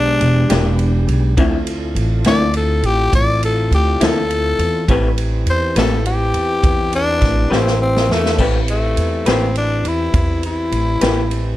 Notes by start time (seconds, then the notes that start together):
Already playing: B1 G#3 B3 D4 G4
0.20 E1, ride
0.49 E1 E3 G#3 D4 G4, snare, ride
0.79 ride
1.08 B1, ride
1.37 D2 D3 F3 C4 E4 F4 A4, kick, ride
1.67 ride
1.95 A1, ride
2.24 D2 D3 F3 C4 E4 D5, snare, ride
2.54 A4, ride
2.82 A1 G4, ride
3.13 A1 D5, kick, ride
3.43 A4, ride
3.71 D2 G4, ride
4.00 D2 D3 F3 C4 E4 A4, snare, ride
4.31 ride
4.58 E2, ride
4.88 A1 A3 C4 E4 G4 B4, kick, ride
5.18 ride
5.46 E2, ride
5.50 C5
5.76 A1 A3 C4 G4 A4 B4, snare, ride
6.05 G4, ride
6.34 E2, ride
6.63 E2, kick, ride
6.93 D4, ride
7.21 A1, kick, snare, ride
7.50 A1 A3 C4 G4 B4, snare
7.67 snare
7.82 C4
7.96 snare
8.09 E2 A3 B3, snare
8.14 C4 D4
8.20 E4 F4
8.25 G4 A4, snare
8.31 B4 C5
8.36 A1 A3 C4 E4 G4 B4 D5, kick, crash
8.40 G4 B4
8.68 A3, ride
8.97 E2, ride
9.25 A1 A3 C4 G4 B4, snare, ride
9.55 D4, ride
9.84 E2 E4, ride
10.13 E2, kick, ride
10.43 E4, ride
10.71 A1, ride
11.01 A1 A3 C4 G4 B4, snare, ride
11.31 ride